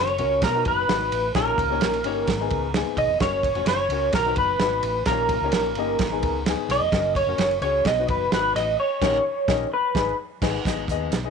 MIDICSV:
0, 0, Header, 1, 5, 480
1, 0, Start_track
1, 0, Tempo, 465116
1, 1389, Time_signature, 4, 2, 24, 8
1, 11662, End_track
2, 0, Start_track
2, 0, Title_t, "Clean electric guitar"
2, 0, Program_c, 0, 27
2, 0, Note_on_c, 0, 73, 101
2, 449, Note_off_c, 0, 73, 0
2, 453, Note_on_c, 0, 70, 104
2, 688, Note_off_c, 0, 70, 0
2, 698, Note_on_c, 0, 71, 95
2, 1362, Note_off_c, 0, 71, 0
2, 1401, Note_on_c, 0, 70, 95
2, 2791, Note_off_c, 0, 70, 0
2, 3079, Note_on_c, 0, 75, 102
2, 3296, Note_off_c, 0, 75, 0
2, 3315, Note_on_c, 0, 73, 110
2, 3784, Note_off_c, 0, 73, 0
2, 3796, Note_on_c, 0, 73, 97
2, 4278, Note_off_c, 0, 73, 0
2, 4282, Note_on_c, 0, 70, 100
2, 4497, Note_off_c, 0, 70, 0
2, 4523, Note_on_c, 0, 71, 97
2, 5227, Note_off_c, 0, 71, 0
2, 5231, Note_on_c, 0, 70, 95
2, 6627, Note_off_c, 0, 70, 0
2, 6929, Note_on_c, 0, 75, 117
2, 7388, Note_off_c, 0, 75, 0
2, 7392, Note_on_c, 0, 73, 100
2, 7836, Note_off_c, 0, 73, 0
2, 7864, Note_on_c, 0, 73, 103
2, 8112, Note_off_c, 0, 73, 0
2, 8122, Note_on_c, 0, 75, 119
2, 8358, Note_off_c, 0, 75, 0
2, 8362, Note_on_c, 0, 71, 95
2, 8593, Note_off_c, 0, 71, 0
2, 8606, Note_on_c, 0, 71, 91
2, 8829, Note_off_c, 0, 71, 0
2, 8833, Note_on_c, 0, 75, 102
2, 9074, Note_off_c, 0, 75, 0
2, 9079, Note_on_c, 0, 73, 102
2, 9991, Note_off_c, 0, 73, 0
2, 10046, Note_on_c, 0, 71, 88
2, 10484, Note_off_c, 0, 71, 0
2, 11662, End_track
3, 0, Start_track
3, 0, Title_t, "Upright piano"
3, 0, Program_c, 1, 0
3, 190, Note_on_c, 1, 61, 73
3, 197, Note_on_c, 1, 66, 70
3, 209, Note_on_c, 1, 70, 90
3, 430, Note_off_c, 1, 61, 0
3, 432, Note_on_c, 1, 47, 62
3, 434, Note_off_c, 1, 66, 0
3, 440, Note_off_c, 1, 70, 0
3, 567, Note_on_c, 1, 63, 71
3, 568, Note_on_c, 1, 66, 72
3, 570, Note_on_c, 1, 71, 77
3, 814, Note_off_c, 1, 63, 0
3, 815, Note_off_c, 1, 66, 0
3, 816, Note_off_c, 1, 71, 0
3, 907, Note_on_c, 1, 63, 73
3, 914, Note_on_c, 1, 66, 68
3, 929, Note_on_c, 1, 70, 71
3, 977, Note_off_c, 1, 70, 0
3, 982, Note_on_c, 1, 71, 82
3, 1109, Note_off_c, 1, 47, 0
3, 1249, Note_off_c, 1, 63, 0
3, 1253, Note_off_c, 1, 66, 0
3, 1287, Note_off_c, 1, 71, 0
3, 1399, Note_on_c, 1, 61, 71
3, 1400, Note_on_c, 1, 58, 70
3, 1404, Note_on_c, 1, 46, 63
3, 1407, Note_on_c, 1, 63, 70
3, 1409, Note_on_c, 1, 67, 74
3, 1411, Note_on_c, 1, 73, 82
3, 1650, Note_off_c, 1, 58, 0
3, 1650, Note_off_c, 1, 61, 0
3, 1653, Note_off_c, 1, 63, 0
3, 1655, Note_off_c, 1, 67, 0
3, 1656, Note_off_c, 1, 73, 0
3, 1753, Note_on_c, 1, 58, 75
3, 1756, Note_on_c, 1, 61, 69
3, 1763, Note_on_c, 1, 63, 72
3, 1765, Note_on_c, 1, 67, 72
3, 1773, Note_on_c, 1, 73, 83
3, 2007, Note_off_c, 1, 58, 0
3, 2008, Note_off_c, 1, 61, 0
3, 2011, Note_off_c, 1, 63, 0
3, 2012, Note_off_c, 1, 67, 0
3, 2017, Note_off_c, 1, 73, 0
3, 2074, Note_off_c, 1, 46, 0
3, 2109, Note_on_c, 1, 58, 88
3, 2113, Note_on_c, 1, 61, 77
3, 2121, Note_on_c, 1, 63, 82
3, 2124, Note_on_c, 1, 67, 80
3, 2125, Note_on_c, 1, 73, 102
3, 2348, Note_off_c, 1, 58, 0
3, 2348, Note_on_c, 1, 44, 76
3, 2350, Note_off_c, 1, 61, 0
3, 2354, Note_off_c, 1, 63, 0
3, 2356, Note_off_c, 1, 67, 0
3, 2356, Note_off_c, 1, 73, 0
3, 2478, Note_on_c, 1, 59, 95
3, 2485, Note_on_c, 1, 63, 84
3, 2491, Note_on_c, 1, 68, 99
3, 2728, Note_off_c, 1, 59, 0
3, 2732, Note_off_c, 1, 63, 0
3, 2735, Note_off_c, 1, 68, 0
3, 2832, Note_on_c, 1, 58, 76
3, 2840, Note_on_c, 1, 63, 79
3, 2851, Note_on_c, 1, 68, 100
3, 2887, Note_off_c, 1, 58, 0
3, 2893, Note_on_c, 1, 59, 85
3, 3026, Note_off_c, 1, 44, 0
3, 3174, Note_off_c, 1, 63, 0
3, 3180, Note_off_c, 1, 68, 0
3, 3201, Note_off_c, 1, 59, 0
3, 3299, Note_on_c, 1, 61, 71
3, 3308, Note_on_c, 1, 66, 64
3, 3315, Note_on_c, 1, 70, 83
3, 3558, Note_off_c, 1, 61, 0
3, 3563, Note_off_c, 1, 66, 0
3, 3567, Note_off_c, 1, 70, 0
3, 3666, Note_on_c, 1, 61, 77
3, 3673, Note_on_c, 1, 66, 68
3, 3679, Note_on_c, 1, 73, 89
3, 3922, Note_off_c, 1, 61, 0
3, 3925, Note_off_c, 1, 66, 0
3, 3929, Note_off_c, 1, 73, 0
3, 4035, Note_on_c, 1, 61, 71
3, 4047, Note_on_c, 1, 66, 74
3, 4052, Note_on_c, 1, 70, 80
3, 4270, Note_off_c, 1, 61, 0
3, 4276, Note_off_c, 1, 66, 0
3, 4279, Note_off_c, 1, 70, 0
3, 4280, Note_on_c, 1, 47, 61
3, 4393, Note_on_c, 1, 63, 73
3, 4401, Note_on_c, 1, 66, 71
3, 4413, Note_on_c, 1, 71, 83
3, 4645, Note_off_c, 1, 63, 0
3, 4649, Note_off_c, 1, 66, 0
3, 4655, Note_off_c, 1, 71, 0
3, 4762, Note_on_c, 1, 63, 76
3, 4770, Note_on_c, 1, 66, 65
3, 4781, Note_on_c, 1, 71, 85
3, 4951, Note_off_c, 1, 47, 0
3, 5095, Note_off_c, 1, 63, 0
3, 5099, Note_off_c, 1, 66, 0
3, 5105, Note_off_c, 1, 71, 0
3, 5251, Note_on_c, 1, 58, 73
3, 5257, Note_on_c, 1, 61, 68
3, 5260, Note_on_c, 1, 63, 66
3, 5260, Note_on_c, 1, 67, 70
3, 5261, Note_on_c, 1, 46, 70
3, 5270, Note_on_c, 1, 73, 83
3, 5494, Note_off_c, 1, 58, 0
3, 5497, Note_off_c, 1, 61, 0
3, 5498, Note_off_c, 1, 67, 0
3, 5499, Note_off_c, 1, 63, 0
3, 5503, Note_off_c, 1, 73, 0
3, 5608, Note_on_c, 1, 58, 85
3, 5610, Note_on_c, 1, 61, 68
3, 5615, Note_on_c, 1, 63, 73
3, 5616, Note_on_c, 1, 67, 67
3, 5620, Note_on_c, 1, 73, 82
3, 5853, Note_off_c, 1, 58, 0
3, 5854, Note_off_c, 1, 61, 0
3, 5856, Note_off_c, 1, 63, 0
3, 5857, Note_off_c, 1, 67, 0
3, 5859, Note_off_c, 1, 73, 0
3, 5922, Note_off_c, 1, 46, 0
3, 5960, Note_on_c, 1, 58, 88
3, 5961, Note_on_c, 1, 61, 80
3, 5968, Note_on_c, 1, 63, 84
3, 5974, Note_on_c, 1, 67, 84
3, 5975, Note_on_c, 1, 75, 101
3, 6193, Note_off_c, 1, 58, 0
3, 6193, Note_off_c, 1, 61, 0
3, 6197, Note_off_c, 1, 63, 0
3, 6199, Note_off_c, 1, 67, 0
3, 6200, Note_off_c, 1, 75, 0
3, 6203, Note_on_c, 1, 44, 79
3, 6307, Note_on_c, 1, 59, 88
3, 6316, Note_on_c, 1, 63, 77
3, 6317, Note_on_c, 1, 68, 99
3, 6562, Note_off_c, 1, 59, 0
3, 6567, Note_off_c, 1, 63, 0
3, 6567, Note_off_c, 1, 68, 0
3, 6677, Note_on_c, 1, 59, 89
3, 6687, Note_on_c, 1, 63, 86
3, 6699, Note_on_c, 1, 68, 105
3, 6873, Note_off_c, 1, 44, 0
3, 7013, Note_off_c, 1, 59, 0
3, 7018, Note_off_c, 1, 63, 0
3, 7023, Note_off_c, 1, 68, 0
3, 7150, Note_on_c, 1, 61, 80
3, 7157, Note_on_c, 1, 66, 70
3, 7168, Note_on_c, 1, 70, 87
3, 7404, Note_off_c, 1, 61, 0
3, 7407, Note_off_c, 1, 66, 0
3, 7413, Note_off_c, 1, 70, 0
3, 7506, Note_on_c, 1, 61, 79
3, 7516, Note_on_c, 1, 66, 66
3, 7521, Note_on_c, 1, 70, 86
3, 7762, Note_off_c, 1, 61, 0
3, 7767, Note_off_c, 1, 66, 0
3, 7770, Note_off_c, 1, 70, 0
3, 7865, Note_on_c, 1, 61, 77
3, 7875, Note_on_c, 1, 66, 69
3, 7883, Note_on_c, 1, 68, 85
3, 8105, Note_off_c, 1, 61, 0
3, 8110, Note_off_c, 1, 66, 0
3, 8114, Note_off_c, 1, 68, 0
3, 8115, Note_on_c, 1, 47, 65
3, 8240, Note_on_c, 1, 63, 75
3, 8254, Note_on_c, 1, 66, 68
3, 8259, Note_on_c, 1, 71, 87
3, 8489, Note_off_c, 1, 63, 0
3, 8496, Note_off_c, 1, 66, 0
3, 8498, Note_off_c, 1, 71, 0
3, 8592, Note_on_c, 1, 63, 74
3, 8602, Note_on_c, 1, 66, 72
3, 8608, Note_on_c, 1, 70, 70
3, 8654, Note_off_c, 1, 70, 0
3, 8669, Note_on_c, 1, 71, 83
3, 8789, Note_off_c, 1, 47, 0
3, 8930, Note_off_c, 1, 63, 0
3, 8935, Note_off_c, 1, 66, 0
3, 8969, Note_off_c, 1, 71, 0
3, 9304, Note_on_c, 1, 61, 111
3, 9309, Note_on_c, 1, 63, 119
3, 9314, Note_on_c, 1, 70, 113
3, 9317, Note_on_c, 1, 67, 108
3, 9324, Note_on_c, 1, 73, 104
3, 9468, Note_off_c, 1, 61, 0
3, 9471, Note_off_c, 1, 63, 0
3, 9474, Note_off_c, 1, 70, 0
3, 9476, Note_off_c, 1, 67, 0
3, 9480, Note_off_c, 1, 73, 0
3, 9787, Note_on_c, 1, 61, 97
3, 9791, Note_on_c, 1, 63, 106
3, 9791, Note_on_c, 1, 70, 97
3, 9792, Note_on_c, 1, 67, 99
3, 9802, Note_on_c, 1, 75, 96
3, 9950, Note_off_c, 1, 61, 0
3, 9952, Note_off_c, 1, 63, 0
3, 9952, Note_off_c, 1, 70, 0
3, 9953, Note_off_c, 1, 67, 0
3, 9959, Note_off_c, 1, 75, 0
3, 10275, Note_on_c, 1, 63, 94
3, 10277, Note_on_c, 1, 68, 94
3, 10291, Note_on_c, 1, 71, 103
3, 10435, Note_off_c, 1, 63, 0
3, 10436, Note_off_c, 1, 68, 0
3, 10444, Note_off_c, 1, 71, 0
3, 10752, Note_on_c, 1, 63, 110
3, 10758, Note_on_c, 1, 68, 104
3, 10765, Note_on_c, 1, 71, 107
3, 10913, Note_off_c, 1, 63, 0
3, 10917, Note_off_c, 1, 68, 0
3, 10921, Note_off_c, 1, 71, 0
3, 10999, Note_on_c, 1, 59, 81
3, 11001, Note_on_c, 1, 63, 74
3, 11006, Note_on_c, 1, 68, 68
3, 11009, Note_on_c, 1, 44, 78
3, 11012, Note_on_c, 1, 75, 98
3, 11164, Note_off_c, 1, 59, 0
3, 11166, Note_off_c, 1, 63, 0
3, 11168, Note_off_c, 1, 68, 0
3, 11171, Note_off_c, 1, 75, 0
3, 11254, Note_on_c, 1, 59, 98
3, 11256, Note_on_c, 1, 63, 83
3, 11262, Note_on_c, 1, 68, 83
3, 11264, Note_on_c, 1, 75, 103
3, 11498, Note_off_c, 1, 59, 0
3, 11499, Note_off_c, 1, 63, 0
3, 11502, Note_off_c, 1, 68, 0
3, 11503, Note_off_c, 1, 75, 0
3, 11601, Note_on_c, 1, 63, 77
3, 11602, Note_on_c, 1, 59, 79
3, 11611, Note_on_c, 1, 68, 83
3, 11612, Note_on_c, 1, 75, 90
3, 11662, Note_off_c, 1, 44, 0
3, 11662, Note_off_c, 1, 59, 0
3, 11662, Note_off_c, 1, 63, 0
3, 11662, Note_off_c, 1, 68, 0
3, 11662, Note_off_c, 1, 75, 0
3, 11662, End_track
4, 0, Start_track
4, 0, Title_t, "Fingered electric bass"
4, 0, Program_c, 2, 33
4, 0, Note_on_c, 2, 30, 96
4, 197, Note_on_c, 2, 37, 97
4, 212, Note_off_c, 2, 30, 0
4, 435, Note_on_c, 2, 47, 102
4, 451, Note_off_c, 2, 37, 0
4, 641, Note_off_c, 2, 47, 0
4, 682, Note_on_c, 2, 30, 75
4, 885, Note_off_c, 2, 30, 0
4, 919, Note_on_c, 2, 32, 109
4, 1123, Note_off_c, 2, 32, 0
4, 1157, Note_on_c, 2, 33, 102
4, 1361, Note_off_c, 2, 33, 0
4, 1392, Note_on_c, 2, 34, 105
4, 1598, Note_off_c, 2, 34, 0
4, 1630, Note_on_c, 2, 37, 95
4, 1837, Note_off_c, 2, 37, 0
4, 1877, Note_on_c, 2, 34, 81
4, 2117, Note_off_c, 2, 34, 0
4, 2117, Note_on_c, 2, 31, 92
4, 2321, Note_off_c, 2, 31, 0
4, 2349, Note_on_c, 2, 32, 114
4, 2556, Note_off_c, 2, 32, 0
4, 2593, Note_on_c, 2, 37, 77
4, 2902, Note_off_c, 2, 37, 0
4, 3062, Note_on_c, 2, 35, 106
4, 3168, Note_off_c, 2, 35, 0
4, 3177, Note_on_c, 2, 29, 82
4, 3285, Note_off_c, 2, 29, 0
4, 3307, Note_on_c, 2, 30, 97
4, 3618, Note_off_c, 2, 30, 0
4, 3664, Note_on_c, 2, 29, 87
4, 3767, Note_off_c, 2, 29, 0
4, 3773, Note_on_c, 2, 30, 89
4, 3986, Note_off_c, 2, 30, 0
4, 4010, Note_on_c, 2, 37, 86
4, 4225, Note_off_c, 2, 37, 0
4, 4264, Note_on_c, 2, 35, 100
4, 4472, Note_off_c, 2, 35, 0
4, 4509, Note_on_c, 2, 30, 86
4, 4716, Note_off_c, 2, 30, 0
4, 4739, Note_on_c, 2, 32, 97
4, 4950, Note_off_c, 2, 32, 0
4, 4981, Note_on_c, 2, 33, 105
4, 5191, Note_off_c, 2, 33, 0
4, 5225, Note_on_c, 2, 34, 100
4, 5537, Note_off_c, 2, 34, 0
4, 5585, Note_on_c, 2, 37, 82
4, 5689, Note_off_c, 2, 37, 0
4, 5707, Note_on_c, 2, 34, 79
4, 5943, Note_off_c, 2, 34, 0
4, 5943, Note_on_c, 2, 31, 100
4, 6152, Note_off_c, 2, 31, 0
4, 6187, Note_on_c, 2, 32, 97
4, 6429, Note_off_c, 2, 32, 0
4, 6429, Note_on_c, 2, 37, 87
4, 6739, Note_off_c, 2, 37, 0
4, 6901, Note_on_c, 2, 35, 106
4, 7007, Note_off_c, 2, 35, 0
4, 7017, Note_on_c, 2, 29, 93
4, 7124, Note_off_c, 2, 29, 0
4, 7143, Note_on_c, 2, 30, 113
4, 7456, Note_off_c, 2, 30, 0
4, 7499, Note_on_c, 2, 29, 93
4, 7606, Note_off_c, 2, 29, 0
4, 7616, Note_on_c, 2, 30, 88
4, 7828, Note_off_c, 2, 30, 0
4, 7856, Note_on_c, 2, 37, 82
4, 8068, Note_off_c, 2, 37, 0
4, 8101, Note_on_c, 2, 35, 117
4, 8311, Note_off_c, 2, 35, 0
4, 8347, Note_on_c, 2, 30, 92
4, 8555, Note_off_c, 2, 30, 0
4, 8581, Note_on_c, 2, 32, 97
4, 8791, Note_off_c, 2, 32, 0
4, 8820, Note_on_c, 2, 33, 100
4, 9031, Note_off_c, 2, 33, 0
4, 9301, Note_on_c, 2, 34, 107
4, 9466, Note_off_c, 2, 34, 0
4, 9786, Note_on_c, 2, 34, 91
4, 9949, Note_off_c, 2, 34, 0
4, 10264, Note_on_c, 2, 32, 89
4, 10429, Note_off_c, 2, 32, 0
4, 10753, Note_on_c, 2, 32, 109
4, 10914, Note_off_c, 2, 32, 0
4, 10992, Note_on_c, 2, 32, 100
4, 11199, Note_off_c, 2, 32, 0
4, 11229, Note_on_c, 2, 39, 96
4, 11438, Note_off_c, 2, 39, 0
4, 11470, Note_on_c, 2, 35, 74
4, 11662, Note_off_c, 2, 35, 0
4, 11662, End_track
5, 0, Start_track
5, 0, Title_t, "Drums"
5, 74, Note_on_c, 9, 51, 48
5, 178, Note_off_c, 9, 51, 0
5, 189, Note_on_c, 9, 51, 62
5, 293, Note_off_c, 9, 51, 0
5, 430, Note_on_c, 9, 51, 82
5, 433, Note_on_c, 9, 36, 89
5, 441, Note_on_c, 9, 38, 112
5, 534, Note_off_c, 9, 51, 0
5, 536, Note_off_c, 9, 36, 0
5, 544, Note_off_c, 9, 38, 0
5, 672, Note_on_c, 9, 51, 60
5, 680, Note_on_c, 9, 36, 99
5, 775, Note_off_c, 9, 51, 0
5, 783, Note_off_c, 9, 36, 0
5, 920, Note_on_c, 9, 51, 76
5, 922, Note_on_c, 9, 38, 114
5, 1023, Note_off_c, 9, 51, 0
5, 1026, Note_off_c, 9, 38, 0
5, 1156, Note_on_c, 9, 51, 74
5, 1260, Note_off_c, 9, 51, 0
5, 1389, Note_on_c, 9, 51, 63
5, 1393, Note_on_c, 9, 36, 117
5, 1395, Note_on_c, 9, 38, 112
5, 1492, Note_off_c, 9, 51, 0
5, 1497, Note_off_c, 9, 36, 0
5, 1498, Note_off_c, 9, 38, 0
5, 1630, Note_on_c, 9, 36, 102
5, 1641, Note_on_c, 9, 51, 70
5, 1733, Note_off_c, 9, 36, 0
5, 1744, Note_off_c, 9, 51, 0
5, 1867, Note_on_c, 9, 51, 75
5, 1878, Note_on_c, 9, 38, 122
5, 1970, Note_off_c, 9, 51, 0
5, 1981, Note_off_c, 9, 38, 0
5, 1998, Note_on_c, 9, 51, 53
5, 2101, Note_off_c, 9, 51, 0
5, 2106, Note_on_c, 9, 51, 62
5, 2209, Note_off_c, 9, 51, 0
5, 2347, Note_on_c, 9, 51, 79
5, 2351, Note_on_c, 9, 36, 85
5, 2358, Note_on_c, 9, 38, 117
5, 2450, Note_off_c, 9, 51, 0
5, 2454, Note_off_c, 9, 36, 0
5, 2461, Note_off_c, 9, 38, 0
5, 2584, Note_on_c, 9, 51, 62
5, 2594, Note_on_c, 9, 36, 96
5, 2687, Note_off_c, 9, 51, 0
5, 2697, Note_off_c, 9, 36, 0
5, 2829, Note_on_c, 9, 51, 69
5, 2831, Note_on_c, 9, 38, 127
5, 2932, Note_off_c, 9, 51, 0
5, 2934, Note_off_c, 9, 38, 0
5, 3065, Note_on_c, 9, 36, 95
5, 3068, Note_on_c, 9, 51, 74
5, 3168, Note_off_c, 9, 36, 0
5, 3171, Note_off_c, 9, 51, 0
5, 3305, Note_on_c, 9, 51, 72
5, 3308, Note_on_c, 9, 36, 121
5, 3310, Note_on_c, 9, 38, 112
5, 3408, Note_off_c, 9, 51, 0
5, 3412, Note_off_c, 9, 36, 0
5, 3413, Note_off_c, 9, 38, 0
5, 3544, Note_on_c, 9, 36, 101
5, 3553, Note_on_c, 9, 51, 71
5, 3647, Note_off_c, 9, 36, 0
5, 3656, Note_off_c, 9, 51, 0
5, 3664, Note_on_c, 9, 51, 44
5, 3767, Note_off_c, 9, 51, 0
5, 3777, Note_on_c, 9, 51, 83
5, 3789, Note_on_c, 9, 38, 127
5, 3881, Note_off_c, 9, 51, 0
5, 3892, Note_off_c, 9, 38, 0
5, 4023, Note_on_c, 9, 51, 65
5, 4126, Note_off_c, 9, 51, 0
5, 4258, Note_on_c, 9, 51, 77
5, 4266, Note_on_c, 9, 36, 103
5, 4269, Note_on_c, 9, 38, 122
5, 4362, Note_off_c, 9, 51, 0
5, 4369, Note_off_c, 9, 36, 0
5, 4372, Note_off_c, 9, 38, 0
5, 4497, Note_on_c, 9, 51, 62
5, 4510, Note_on_c, 9, 36, 107
5, 4600, Note_off_c, 9, 51, 0
5, 4613, Note_off_c, 9, 36, 0
5, 4741, Note_on_c, 9, 51, 72
5, 4744, Note_on_c, 9, 38, 121
5, 4844, Note_off_c, 9, 51, 0
5, 4847, Note_off_c, 9, 38, 0
5, 4981, Note_on_c, 9, 51, 70
5, 5085, Note_off_c, 9, 51, 0
5, 5217, Note_on_c, 9, 51, 66
5, 5222, Note_on_c, 9, 38, 118
5, 5225, Note_on_c, 9, 36, 113
5, 5320, Note_off_c, 9, 51, 0
5, 5325, Note_off_c, 9, 38, 0
5, 5328, Note_off_c, 9, 36, 0
5, 5459, Note_on_c, 9, 36, 97
5, 5461, Note_on_c, 9, 51, 71
5, 5562, Note_off_c, 9, 36, 0
5, 5564, Note_off_c, 9, 51, 0
5, 5694, Note_on_c, 9, 51, 84
5, 5705, Note_on_c, 9, 38, 127
5, 5797, Note_off_c, 9, 51, 0
5, 5808, Note_off_c, 9, 38, 0
5, 5936, Note_on_c, 9, 51, 57
5, 6040, Note_off_c, 9, 51, 0
5, 6180, Note_on_c, 9, 51, 85
5, 6185, Note_on_c, 9, 36, 99
5, 6191, Note_on_c, 9, 38, 117
5, 6283, Note_off_c, 9, 51, 0
5, 6289, Note_off_c, 9, 36, 0
5, 6294, Note_off_c, 9, 38, 0
5, 6426, Note_on_c, 9, 51, 64
5, 6432, Note_on_c, 9, 36, 105
5, 6529, Note_off_c, 9, 51, 0
5, 6536, Note_off_c, 9, 36, 0
5, 6669, Note_on_c, 9, 51, 76
5, 6671, Note_on_c, 9, 38, 123
5, 6772, Note_off_c, 9, 51, 0
5, 6775, Note_off_c, 9, 38, 0
5, 6910, Note_on_c, 9, 51, 73
5, 6914, Note_on_c, 9, 38, 38
5, 7014, Note_off_c, 9, 51, 0
5, 7017, Note_off_c, 9, 38, 0
5, 7145, Note_on_c, 9, 36, 121
5, 7146, Note_on_c, 9, 51, 66
5, 7151, Note_on_c, 9, 38, 115
5, 7248, Note_off_c, 9, 36, 0
5, 7249, Note_off_c, 9, 51, 0
5, 7254, Note_off_c, 9, 38, 0
5, 7381, Note_on_c, 9, 36, 97
5, 7391, Note_on_c, 9, 51, 76
5, 7484, Note_off_c, 9, 36, 0
5, 7494, Note_off_c, 9, 51, 0
5, 7618, Note_on_c, 9, 51, 79
5, 7629, Note_on_c, 9, 38, 127
5, 7721, Note_off_c, 9, 51, 0
5, 7732, Note_off_c, 9, 38, 0
5, 7751, Note_on_c, 9, 51, 47
5, 7854, Note_off_c, 9, 51, 0
5, 7861, Note_on_c, 9, 51, 62
5, 7965, Note_off_c, 9, 51, 0
5, 8100, Note_on_c, 9, 51, 75
5, 8103, Note_on_c, 9, 36, 93
5, 8111, Note_on_c, 9, 38, 122
5, 8204, Note_off_c, 9, 51, 0
5, 8206, Note_off_c, 9, 36, 0
5, 8215, Note_off_c, 9, 38, 0
5, 8342, Note_on_c, 9, 51, 64
5, 8348, Note_on_c, 9, 36, 108
5, 8446, Note_off_c, 9, 51, 0
5, 8451, Note_off_c, 9, 36, 0
5, 8586, Note_on_c, 9, 51, 74
5, 8588, Note_on_c, 9, 38, 127
5, 8689, Note_off_c, 9, 51, 0
5, 8691, Note_off_c, 9, 38, 0
5, 8833, Note_on_c, 9, 51, 73
5, 8837, Note_on_c, 9, 38, 40
5, 8937, Note_off_c, 9, 51, 0
5, 8940, Note_off_c, 9, 38, 0
5, 9305, Note_on_c, 9, 36, 127
5, 9307, Note_on_c, 9, 49, 86
5, 9314, Note_on_c, 9, 38, 116
5, 9408, Note_off_c, 9, 36, 0
5, 9410, Note_off_c, 9, 49, 0
5, 9417, Note_off_c, 9, 38, 0
5, 9784, Note_on_c, 9, 36, 113
5, 9788, Note_on_c, 9, 38, 118
5, 9887, Note_off_c, 9, 36, 0
5, 9891, Note_off_c, 9, 38, 0
5, 10268, Note_on_c, 9, 36, 111
5, 10275, Note_on_c, 9, 38, 108
5, 10371, Note_off_c, 9, 36, 0
5, 10378, Note_off_c, 9, 38, 0
5, 10751, Note_on_c, 9, 36, 110
5, 10753, Note_on_c, 9, 49, 92
5, 10761, Note_on_c, 9, 38, 109
5, 10854, Note_off_c, 9, 36, 0
5, 10857, Note_off_c, 9, 49, 0
5, 10864, Note_off_c, 9, 38, 0
5, 10995, Note_on_c, 9, 36, 117
5, 11003, Note_on_c, 9, 42, 75
5, 11008, Note_on_c, 9, 38, 104
5, 11098, Note_off_c, 9, 36, 0
5, 11106, Note_off_c, 9, 42, 0
5, 11111, Note_off_c, 9, 38, 0
5, 11230, Note_on_c, 9, 36, 92
5, 11241, Note_on_c, 9, 42, 78
5, 11333, Note_off_c, 9, 36, 0
5, 11344, Note_off_c, 9, 42, 0
5, 11474, Note_on_c, 9, 42, 90
5, 11485, Note_on_c, 9, 38, 110
5, 11577, Note_off_c, 9, 42, 0
5, 11589, Note_off_c, 9, 38, 0
5, 11662, End_track
0, 0, End_of_file